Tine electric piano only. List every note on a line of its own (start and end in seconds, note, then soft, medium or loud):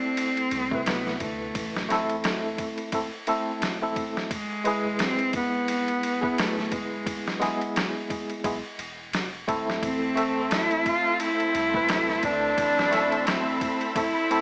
0.00 0.66 A3 medium
0.00 0.67 C4 medium
0.00 0.67 E4 medium
0.00 0.68 A4 loud
0.71 1.86 C3 medium
0.71 1.86 A3 medium
0.71 1.87 E4 medium
0.71 1.87 B4 medium
1.89 2.89 A3 loud
1.89 2.90 C4 medium
1.89 2.90 E4 medium
1.89 2.91 A4 loud
2.93 3.05 A3 medium
2.93 3.05 C4 medium
2.93 3.06 E4 medium
2.93 3.06 A4 medium
3.27 3.77 A3 medium
3.27 3.77 C4 medium
3.27 3.77 E4 medium
3.27 3.78 A4 loud
3.82 4.29 A3 medium
3.82 4.29 C4 medium
3.82 4.29 E4 medium
3.82 4.30 A4 medium
4.64 6.18 G#3 loud
4.64 6.19 E4 medium
4.64 6.19 G#4 loud
4.64 6.18 B4 medium
6.21 7.37 B3 medium
6.21 7.38 E4 medium
6.21 7.37 G#4 medium
6.21 7.38 B4 medium
7.39 8.40 G#3 loud
7.39 8.41 B3 medium
7.39 8.41 E4 medium
7.39 8.41 G#4 loud
8.44 8.56 G#3 medium
8.44 8.57 B3 medium
8.44 8.57 E4 medium
8.44 8.57 G#4 medium
9.48 10.13 A3 loud
9.48 10.13 C4 medium
9.48 10.14 E4 medium
9.48 10.14 A4 loud
10.15 11.69 A3 loud
10.15 11.69 C4 medium
10.15 11.71 A4 loud
10.15 11.70 E5 medium
11.73 12.89 A3 medium
11.73 12.89 C4 medium
11.73 12.90 E4 medium
11.73 12.90 B4 medium
12.91 13.92 A3 loud
12.91 13.92 C4 medium
12.91 13.93 E4 medium
12.91 13.93 A4 loud
13.96 14.08 A3 medium
13.96 14.08 C4 medium
13.96 14.09 E4 medium
13.96 14.09 A4 medium
14.31 14.41 A3 medium
14.31 14.41 C4 medium
14.31 14.41 E4 medium
14.31 14.41 A4 loud